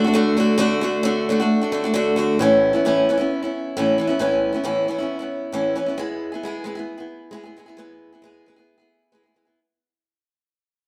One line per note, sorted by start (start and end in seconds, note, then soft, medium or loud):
0.04 0.13 A3 medium
0.04 0.14 D4 medium
0.04 0.14 F#4 medium
0.14 0.35 D3 medium
0.14 0.36 A3 loud
0.14 0.37 D4 loud
0.14 0.38 F#4 medium
0.37 0.56 D3 medium
0.37 0.57 A3 medium
0.37 0.58 D4 medium
0.37 0.59 F#4 medium
0.58 0.80 D3 loud
0.58 0.81 A3 loud
0.58 0.82 D4 loud
0.58 0.83 F#4 loud
0.81 1.02 D3 medium
0.81 1.04 A3 medium
0.81 1.04 D4 medium
0.81 1.04 F#4 medium
1.03 1.27 D3 medium
1.03 1.28 A3 medium
1.03 1.28 D4 medium
1.03 1.28 F#4 medium
1.29 1.40 D3 medium
1.29 1.40 A3 medium
1.29 1.40 D4 medium
1.29 1.38 F#4 medium
1.40 1.63 A3 medium
1.40 1.62 D4 medium
1.40 1.60 F#4 medium
1.61 1.71 A3 soft
1.61 1.72 D4 medium
1.61 1.73 F#4 medium
1.72 1.84 D3 medium
1.72 1.84 A3 medium
1.72 1.84 D4 medium
1.72 1.82 F#4 medium
1.84 1.93 A3 medium
1.84 1.94 D4 medium
1.84 1.94 F#4 medium
1.94 2.15 D3 medium
1.94 2.16 A3 medium
1.94 2.17 D4 medium
1.94 2.18 F#4 medium
2.16 2.39 D3 medium
2.16 2.40 A3 medium
2.16 2.40 D4 medium
2.16 2.41 F#4 medium
2.39 2.73 A2 medium
2.39 2.74 E3 medium
2.39 2.74 B3 medium
2.39 2.73 C#4 medium
2.39 2.72 E4 medium
2.73 2.85 B3 soft
2.73 2.85 C#4 medium
2.73 2.85 E4 medium
2.85 3.07 A2 medium
2.85 3.08 E3 medium
2.85 3.08 B3 medium
2.85 3.08 C#4 medium
2.85 3.09 E4 medium
3.09 3.19 E3 medium
3.09 3.20 B3 medium
3.09 3.18 C#4 medium
3.09 3.16 E4 medium
3.18 3.42 B3 soft
3.18 3.41 C#4 soft
3.18 3.40 E4 medium
3.42 3.75 B3 soft
3.42 3.76 C#4 soft
3.42 3.75 E4 soft
3.77 3.98 A2 medium
3.77 3.97 E3 medium
3.77 3.98 B3 medium
3.77 3.99 C#4 medium
3.77 3.99 E4 medium
3.98 4.09 E3 medium
3.98 4.09 B3 medium
3.98 4.08 C#4 medium
3.98 4.06 E4 medium
4.07 4.19 B3 soft
4.07 4.19 C#4 medium
4.07 4.19 E4 medium
4.19 4.53 A2 medium
4.19 4.53 E3 medium
4.19 4.54 B3 medium
4.19 4.53 C#4 medium
4.19 4.51 E4 medium
4.52 4.63 B3 soft
4.52 4.64 C#4 soft
4.52 4.64 E4 soft
4.64 4.86 A2 medium
4.64 4.87 E3 medium
4.64 4.87 B3 medium
4.64 4.87 C#4 medium
4.64 4.87 E4 medium
4.88 4.99 E3 medium
4.88 4.99 B3 medium
4.88 4.99 C#4 medium
4.88 4.97 E4 medium
4.98 5.19 C#4 medium
4.98 5.18 E4 medium
5.02 5.21 B3 soft
5.19 5.53 B3 soft
5.19 5.53 C#4 soft
5.19 5.53 E4 medium
5.52 5.76 A2 medium
5.52 5.74 E3 medium
5.52 5.75 B3 medium
5.52 5.75 C#4 medium
5.52 5.76 E4 medium
5.75 5.87 E3 medium
5.75 5.87 B3 medium
5.75 5.87 C#4 medium
5.75 5.85 E4 medium
5.86 5.96 B3 soft
5.86 5.99 C#4 soft
5.86 5.98 E4 medium
5.98 6.32 G#3 medium
5.98 6.32 B3 medium
5.98 6.33 E4 medium
5.98 6.31 G#4 medium
6.32 6.44 B3 soft
6.32 6.44 E4 soft
6.32 6.44 G#4 soft
6.43 6.63 G#3 medium
6.43 6.64 B3 medium
6.43 6.65 E4 medium
6.43 6.66 G#4 medium
6.64 6.76 G#3 medium
6.64 6.77 B3 medium
6.64 6.76 E4 medium
6.64 6.74 G#4 medium
6.75 6.99 B3 soft
6.75 6.97 E4 soft
6.75 6.96 G#4 medium
6.98 7.31 B3 soft
6.98 7.31 E4 soft
6.98 7.33 G#4 soft
7.31 7.44 G#3 medium
7.31 7.44 B3 medium
7.31 7.44 E4 medium
7.31 7.42 G#4 medium
7.44 7.56 B3 soft
7.44 7.57 E4 soft
7.44 7.56 G#4 soft
7.57 7.68 G#3 medium
7.57 7.68 B3 medium
7.57 7.67 E4 medium
7.57 7.65 G#4 medium
7.66 7.77 B3 soft
7.66 7.78 E4 soft
7.66 7.78 G#4 medium
7.77 8.12 G#3 medium
7.77 8.12 B3 medium
7.77 8.12 E4 medium
7.77 8.11 G#4 medium
8.12 8.22 B3 soft
8.12 8.22 E4 soft
8.12 8.24 G#4 soft
8.22 8.45 G#3 medium
8.22 8.46 B3 medium
8.22 8.46 E4 medium
8.22 8.47 G#4 medium
8.46 8.58 G#3 soft
8.46 8.58 B3 medium
8.46 8.57 E4 soft
8.46 8.55 G#4 medium
8.56 8.80 B3 soft
8.56 8.78 E4 soft
8.56 8.76 G#4 medium
8.78 9.11 B3 soft
8.78 9.12 E4 soft
8.78 9.13 G#4 soft
9.12 9.24 G#3 medium
9.12 9.24 B3 medium
9.12 9.25 E4 medium
9.12 9.22 G#4 medium
9.23 9.35 B3 soft
9.23 9.35 E4 soft
9.23 9.35 G#4 soft
9.34 9.47 G#3 soft
9.34 9.47 B3 soft
9.34 9.46 E4 medium
9.34 9.44 G#4 medium
9.45 9.59 B3 soft
9.45 9.58 E4 soft
9.45 9.58 G#4 soft